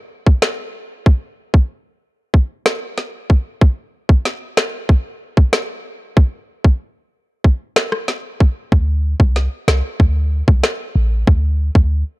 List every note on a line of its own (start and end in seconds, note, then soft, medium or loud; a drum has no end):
0.27 kick loud
0.42 cross-stick medium
0.42 snare loud
1.06 kick loud
1.54 kick loud
2.34 kick medium
2.66 cross-stick medium
2.66 snare loud
2.98 snare medium
3.30 kick medium
3.61 kick loud
4.09 kick loud
4.25 snare medium
4.57 cross-stick medium
4.57 snare loud
4.89 kick medium
5.37 kick loud
5.53 cross-stick medium
5.53 snare loud
6.17 kick loud
6.64 kick loud
7.44 kick medium
7.76 cross-stick medium
7.76 snare loud
7.92 cross-stick medium
8.08 snare medium
8.40 kick medium
8.72 9.15 D2 loud
8.72 kick loud
9.20 9.49 C2 medium
9.20 kick loud
9.36 snare medium
9.68 9.82 C2 medium
9.68 cross-stick medium
9.68 snare loud
10.00 10.43 D2 loud
10.00 kick medium
10.48 10.62 C2 medium
10.48 kick loud
10.63 cross-stick medium
10.63 snare loud
10.96 11.24 A1 medium
11.27 11.70 D2 loud
11.27 kick loud
11.75 12.04 D2 medium
11.75 kick loud